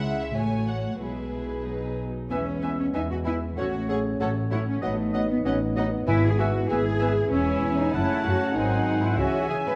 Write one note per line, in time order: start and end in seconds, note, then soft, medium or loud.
0.00 0.33 C#2 medium
0.00 0.33 C#3 medium
0.00 0.33 G#3 medium
0.00 0.33 E4 medium
0.00 0.35 E5 medium
0.00 0.21 F#5 medium
0.22 0.37 E5 medium
0.36 1.01 A1 medium
0.36 1.02 A2 medium
0.36 1.01 A3 medium
0.36 1.01 F#4 soft
0.36 1.01 C#5 medium
0.36 0.68 G#5 medium
0.68 1.01 F#5 medium
1.00 2.08 B1 soft
1.00 2.09 B2 soft
1.00 1.65 G#3 soft
1.00 1.66 E4 soft
1.00 1.97 G#4 soft
1.00 1.96 B4 medium
1.66 2.11 F#3 soft
1.66 2.11 D#4 soft
2.30 2.87 E2 medium
2.30 2.45 E3 medium
2.30 3.54 G#3 medium
2.30 2.39 B3 medium
2.30 3.54 B3 medium
2.30 2.75 C#4 medium
2.30 2.46 B4 soft
2.30 2.45 E5 medium
2.30 2.40 E5 soft
2.30 2.38 G#5 medium
2.62 2.77 E3 soft
2.62 2.71 B3 soft
2.62 2.76 B4 soft
2.62 2.77 E5 medium
2.62 2.71 E5 soft
2.62 2.70 G#5 soft
2.80 2.86 C#4 medium
2.94 3.50 E2 medium
2.94 3.08 E3 soft
2.94 3.03 B3 medium
2.94 3.01 D#4 medium
2.94 3.08 B4 soft
2.94 3.02 E5 medium
2.94 3.09 E5 medium
2.94 3.02 G#5 medium
2.94 3.01 G#5 medium
3.11 3.17 F#4 medium
3.25 3.39 E3 soft
3.25 3.34 B3 medium
3.25 3.34 E4 medium
3.25 3.40 B4 soft
3.25 3.34 E5 soft
3.25 3.41 E5 medium
3.25 3.32 G#5 soft
3.25 3.34 G#5 medium
3.57 4.13 A1 medium
3.57 3.72 F#3 medium
3.57 4.81 A3 medium
3.57 4.81 C#4 medium
3.57 3.67 C#4 medium
3.57 3.88 F#4 medium
3.57 3.71 A4 medium
3.57 3.66 C#5 medium
3.57 3.73 C#5 medium
3.57 3.64 F#5 medium
3.57 3.65 F#5 medium
3.88 4.03 F#3 medium
3.88 3.98 C#4 soft
3.88 3.97 G#4 medium
3.88 4.02 A4 medium
3.88 3.97 C#5 soft
3.88 4.03 C#5 medium
3.88 3.96 F#5 medium
3.88 3.97 F#5 medium
4.20 4.76 A1 medium
4.20 4.34 F#3 soft
4.20 4.29 C#4 soft
4.20 4.34 A4 medium
4.20 4.29 A4 medium
4.20 4.29 C#5 medium
4.20 4.35 C#5 medium
4.20 4.28 F#5 medium
4.51 4.65 F#3 medium
4.51 4.62 C#4 medium
4.51 4.58 E4 medium
4.51 4.65 A4 medium
4.51 4.66 C#5 medium
4.51 4.60 C#5 medium
4.51 4.59 F#5 medium
4.51 4.59 F#5 soft
4.69 4.84 C#4 medium
4.81 5.38 A1 medium
4.81 4.96 F#3 medium
4.81 5.29 A3 medium
4.81 7.29 B3 medium
4.81 4.92 B3 medium
4.81 6.06 D#4 medium
4.81 4.96 B4 medium
4.81 4.96 D#5 medium
4.81 4.92 D#5 medium
4.81 4.90 F#5 medium
4.81 4.91 F#5 medium
5.13 5.28 F#3 medium
5.13 5.23 B3 medium
5.13 5.27 B4 medium
5.13 5.27 D#5 medium
5.13 5.23 D#5 medium
5.13 5.21 F#5 medium
5.13 5.23 F#5 medium
5.31 5.37 B3 medium
5.45 6.01 A1 medium
5.45 5.60 F#3 medium
5.45 5.55 B3 medium
5.45 5.54 C#4 medium
5.45 5.59 B4 medium
5.45 5.60 D#5 medium
5.45 5.54 D#5 medium
5.45 5.53 F#5 medium
5.45 5.54 F#5 medium
5.76 5.90 F#3 medium
5.76 5.86 B3 medium
5.76 5.85 D#4 medium
5.76 5.91 B4 medium
5.76 5.84 D#5 medium
5.76 5.91 D#5 medium
5.76 5.84 F#5 medium
5.76 5.85 F#5 medium
6.07 6.63 G#1 medium
6.07 6.98 G#2 medium
6.07 6.21 E3 medium
6.07 6.16 B3 medium
6.07 7.30 E4 medium
6.07 6.24 E4 loud
6.07 6.22 B4 medium
6.07 6.15 E5 medium
6.07 6.22 E5 medium
6.07 6.16 G#5 medium
6.07 6.15 G#5 medium
6.25 6.40 G#4 medium
6.38 6.53 E3 medium
6.38 6.48 B3 medium
6.38 6.71 F#4 medium
6.38 6.54 B4 medium
6.38 6.47 E5 medium
6.38 6.54 E5 medium
6.38 6.46 G#5 medium
6.38 6.48 G#5 medium
6.69 7.25 G#1 medium
6.69 6.83 E3 medium
6.69 6.79 B3 medium
6.69 7.31 G#4 loud
6.69 6.84 B4 medium
6.69 6.78 E5 medium
6.69 6.85 E5 medium
6.69 6.78 G#5 medium
6.69 6.77 G#5 medium
7.00 7.15 E3 medium
7.00 7.10 B3 medium
7.00 7.16 B4 medium
7.00 7.08 E5 medium
7.00 7.15 E5 medium
7.00 7.09 G#5 medium
7.30 7.61 E1 medium
7.30 7.94 E3 medium
7.30 7.93 G#3 medium
7.30 7.78 C#4 medium
7.30 8.54 C#4 medium
7.30 7.90 E4 medium
7.30 7.90 C#5 medium
7.30 7.91 C#5 medium
7.30 7.90 E5 medium
7.30 7.90 G#5 medium
7.30 7.91 G#5 medium
7.63 7.94 E2 medium
7.79 7.95 D#4 medium
7.92 8.03 F#1 medium
7.92 8.54 C#3 medium
7.92 8.55 A3 medium
7.92 8.55 C#4 medium
7.92 8.25 E4 medium
7.92 8.60 C#5 medium
7.92 9.15 F#5 medium
7.92 8.54 F#5 medium
7.92 8.56 A5 medium
7.92 8.59 A5 medium
8.25 8.33 F#2 medium
8.25 8.56 F#4 medium
8.54 8.86 G#1 medium
8.54 9.19 D#3 medium
8.54 9.17 F#3 medium
8.54 9.17 C4 medium
8.54 9.19 C4 medium
8.54 9.02 D#4 medium
8.54 9.16 F#5 medium
8.54 9.17 G#5 medium
8.54 9.19 G#5 medium
8.59 9.22 C5 medium
8.87 9.18 G#2 medium
9.04 9.19 E4 medium
9.17 9.26 C#2 medium
9.17 9.76 C#3 medium
9.17 9.65 E3 medium
9.17 9.76 C#4 medium
9.17 9.50 F#4 medium
9.17 9.76 C#5 medium
9.17 9.76 E5 medium
9.17 9.76 G#5 medium
9.50 9.76 C#3 medium
9.50 9.56 G#4 medium
9.67 9.73 B4 medium